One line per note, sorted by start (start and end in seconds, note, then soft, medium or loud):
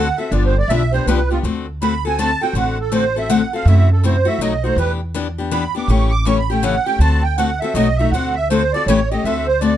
0.00 0.18 F#5 medium
0.18 0.31 C4 soft
0.18 0.32 F#4 soft
0.18 0.32 A4 soft
0.18 0.31 E5 medium
0.31 0.62 G1 medium
0.31 0.53 D3 medium
0.31 0.53 F3 medium
0.31 0.53 B3 medium
0.31 0.54 D4 medium
0.31 0.54 G4 medium
0.31 0.44 D5 medium
0.46 0.57 C5 medium
0.58 0.70 D5 medium
0.68 1.00 B1 medium
0.68 0.81 D3 medium
0.68 0.81 F3 medium
0.68 0.81 B3 medium
0.68 0.82 D4 medium
0.68 0.82 G4 medium
0.68 0.92 E5 loud
0.93 1.07 B3 medium
0.93 1.07 D4 medium
0.93 1.06 G4 medium
0.93 1.06 C5 medium
1.06 1.38 C2 medium
1.06 1.18 D3 medium
1.06 1.19 F3 medium
1.06 1.19 B3 medium
1.06 1.19 D4 loud
1.06 1.19 G4 loud
1.06 1.30 B4 medium
1.30 1.44 B3 soft
1.30 1.44 D4 soft
1.30 1.39 F4 medium
1.30 1.43 G4 medium
1.43 2.33 D2 medium
1.43 1.65 D3 medium
1.43 1.66 A3 medium
1.43 1.65 C4 medium
1.43 1.66 F#4 medium
1.43 1.66 A4 medium
1.82 1.93 D3 medium
1.82 1.93 A3 medium
1.82 1.93 C4 medium
1.82 1.93 F#4 medium
1.82 1.93 A4 medium
1.82 2.04 B5 loud
2.05 2.18 C4 medium
2.05 2.18 F#4 soft
2.05 2.18 A4 medium
2.05 2.18 G#5 medium
2.19 2.30 D3 loud
2.19 2.30 A3 medium
2.19 2.30 C4 medium
2.19 2.30 F#4 medium
2.19 2.30 A4 loud
2.19 2.41 A5 loud
2.41 2.55 C4 soft
2.41 2.55 F#4 medium
2.41 2.54 A4 medium
2.41 2.55 G5 medium
2.53 3.43 A1 medium
2.53 2.76 D3 medium
2.53 2.76 A3 medium
2.53 2.77 C4 medium
2.53 2.77 F#4 medium
2.53 2.77 A4 medium
2.53 2.78 F#5 medium
2.81 2.93 A4 medium
2.92 3.03 D3 medium
2.92 3.03 A3 medium
2.92 3.03 C4 medium
2.92 3.04 F#4 medium
2.92 3.04 A4 loud
2.92 3.16 C5 medium
3.16 3.29 C4 soft
3.16 3.29 F#4 medium
3.16 3.29 A4 medium
3.16 3.30 E5 medium
3.30 3.41 D3 medium
3.30 3.41 A3 loud
3.30 3.41 C4 loud
3.30 3.41 F#4 loud
3.30 3.41 A4 loud
3.30 3.52 F#5 medium
3.53 3.67 C4 soft
3.53 3.66 F#4 medium
3.53 3.66 A4 medium
3.53 3.67 F5 medium
3.65 4.25 F#2 loud
3.65 3.88 C3 medium
3.65 3.88 E3 medium
3.65 3.88 A3 medium
3.65 3.88 E4 medium
3.65 3.89 F#4 medium
3.65 3.90 E5 medium
3.92 4.04 A4 medium
4.04 4.15 C3 medium
4.04 4.15 E3 medium
4.04 4.15 A3 medium
4.04 4.15 E4 medium
4.04 4.16 F#4 medium
4.04 4.27 C5 medium
4.25 4.40 A3 soft
4.25 4.40 E4 soft
4.25 4.39 F#4 medium
4.25 4.40 E5 loud
4.39 4.69 B1 medium
4.39 4.52 B2 medium
4.39 4.52 F#3 loud
4.39 4.52 A3 medium
4.39 4.52 D#4 loud
4.39 4.53 F#4 medium
4.39 4.64 D#5 medium
4.64 4.78 A3 soft
4.64 4.78 D#4 soft
4.64 4.77 F#4 medium
4.64 4.77 C5 medium
4.76 5.66 E2 medium
4.76 4.99 E3 medium
4.76 4.99 B3 medium
4.76 4.99 D4 medium
4.76 5.00 G4 medium
4.76 4.92 B4 medium
5.14 5.26 E3 medium
5.14 5.26 B3 medium
5.14 5.26 D4 medium
5.14 5.27 G4 medium
5.38 5.50 B3 medium
5.38 5.51 D4 soft
5.38 5.51 G4 medium
5.51 5.63 E3 loud
5.51 5.63 B3 medium
5.51 5.63 D4 medium
5.51 5.63 G4 loud
5.51 5.74 B5 medium
5.75 5.89 B3 medium
5.75 5.89 D4 medium
5.75 5.88 G4 medium
5.75 5.89 D6 medium
5.88 6.77 A1 medium
5.88 6.10 C#3 medium
5.88 6.11 E3 medium
5.88 6.11 A3 medium
5.88 6.11 C#4 medium
5.88 6.11 G4 medium
5.88 6.12 C#6 medium
6.11 6.25 D6 loud
6.25 6.37 C#3 medium
6.25 6.37 E3 medium
6.25 6.38 A3 medium
6.25 6.38 C#4 medium
6.25 6.38 G4 medium
6.25 6.38 C#6 loud
6.39 6.51 B5 medium
6.50 6.62 A3 medium
6.50 6.63 C#4 medium
6.50 6.63 G4 medium
6.50 6.63 G5 medium
6.63 6.74 C#3 medium
6.63 6.74 E3 loud
6.63 6.75 A3 loud
6.63 6.75 C#4 loud
6.63 6.75 G4 loud
6.63 6.86 F#5 loud
6.85 7.00 A3 soft
6.85 7.00 C#4 medium
6.85 7.00 G4 medium
6.85 6.99 G5 loud
6.99 7.59 D2 medium
6.99 7.22 D3 medium
6.99 7.22 A3 medium
6.99 7.22 C4 medium
6.99 7.22 F#4 medium
6.99 7.22 A4 medium
6.99 7.23 A5 loud
7.23 7.37 G5 medium
7.37 7.49 D3 medium
7.37 7.49 A3 medium
7.37 7.49 C4 medium
7.37 7.50 F#4 loud
7.37 7.50 A4 loud
7.37 7.60 F#5 medium
7.60 7.75 A4 medium
7.60 7.74 E5 medium
7.64 7.75 C4 soft
7.64 7.75 F#4 medium
7.74 8.04 B1 medium
7.74 7.86 B2 medium
7.74 7.86 F#3 loud
7.74 7.87 A3 medium
7.74 7.87 D#4 loud
7.74 7.87 F#4 loud
7.74 7.97 D#5 medium
7.96 8.12 F#4 medium
7.96 8.10 E5 loud
8.00 8.13 A3 soft
8.00 8.12 D#4 medium
8.11 8.71 D2 medium
8.11 8.34 D3 medium
8.11 8.34 A3 medium
8.11 8.34 C4 medium
8.11 8.35 F#4 medium
8.11 8.35 A4 medium
8.11 8.34 F#5 loud
8.35 8.48 E5 loud
8.50 8.61 D3 medium
8.50 8.61 A3 medium
8.50 8.61 C4 medium
8.50 8.61 F#4 medium
8.50 8.62 A4 medium
8.50 8.72 C5 medium
8.73 8.87 C4 soft
8.73 8.87 F#4 medium
8.73 8.86 A4 medium
8.73 8.86 D5 loud
8.86 9.16 A1 medium
8.86 8.98 C#3 medium
8.86 8.98 E3 loud
8.86 8.98 A3 loud
8.86 8.99 C#4 loud
8.86 8.99 G4 loud
8.86 9.09 C#5 medium
9.11 9.24 A3 soft
9.11 9.24 C#4 medium
9.11 9.24 G4 medium
9.11 9.24 D#5 medium
9.24 9.77 D2 medium
9.24 9.46 D3 medium
9.24 9.46 A3 medium
9.24 9.46 C4 medium
9.24 9.46 F#4 medium
9.24 9.46 A4 medium
9.24 9.47 E5 medium
9.47 9.60 C5 loud
9.61 9.72 D3 medium
9.61 9.72 A3 medium
9.61 9.72 C4 medium
9.61 9.73 F#4 medium
9.61 9.73 A4 medium
9.61 9.77 D5 medium